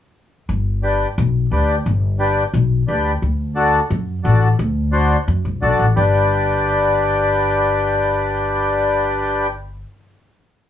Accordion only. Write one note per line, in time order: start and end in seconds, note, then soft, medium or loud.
0.83 1.07 D4 medium
0.83 1.07 G4 medium
0.83 1.07 B4 medium
1.51 1.75 D4 medium
1.51 1.76 G4 medium
1.51 1.76 B4 medium
2.19 2.43 D4 medium
2.19 2.44 G4 medium
2.19 2.44 B4 medium
2.88 3.12 D4 medium
2.88 3.12 G4 medium
2.88 3.12 B4 medium
3.55 3.80 D4 medium
3.55 3.80 F#4 medium
3.55 3.80 A4 medium
4.24 4.48 D4 medium
4.24 4.48 F#4 medium
4.24 4.49 A4 medium
4.92 5.16 D4 medium
4.92 5.17 F#4 medium
4.92 5.17 C5 medium
5.62 5.86 D4 medium
5.62 5.86 F#4 medium
5.62 5.86 A4 medium
5.96 9.47 D4 medium
5.96 9.47 G4 medium
5.96 9.47 B4 medium